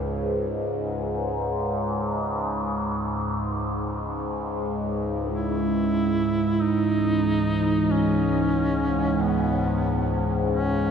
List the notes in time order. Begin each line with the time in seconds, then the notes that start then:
Already playing: C#2 G#2
5.31 C#2 G#2 G#3 E4
5.58 E3
6.62 D#4
7.34 C#5
7.92 C#4
9.22 B3
10.51 C#4